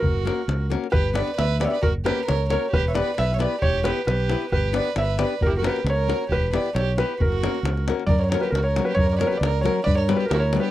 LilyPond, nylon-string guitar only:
\new Staff \with { instrumentName = "Nylon-string guitar" } { \time 2/4 \tempo 4 = 134 r8 <ais cis' fis' ais'>8 r8 <ais cis' fis' ais'>8 | r8 <b d' g' b'>8 r8 <b d' g' b'>8 | r8 <ais cis' fis' ais'>8 r8 <ais cis' fis' ais'>8 | r8 <b e' g' b'>8 r8 <b e' g' b'>8 |
r8 <b e' g' b'>8 r8 <b e' g' b'>8 | r8 <b d' g' b'>8 r8 <b d' g' b'>8 | r8 <ais cis' fis' ais'>8 r8 <ais cis' fis' ais'>8 | r8 <b e' g' b'>8 r8 <b e' g' b'>8 |
r8 <ais cis' fis' ais'>8 r8 <ais cis' fis' ais'>8 | r8 <fis ais cis' fis' ais'>8 r8 <fis ais cis' fis' ais'>8 | r8 <fis ais cis' fis' ais'>8 r8 <fis ais cis' fis' ais'>8 | r8 <g b d' g' b'>8 r8 <g b d' g' b'>8 | }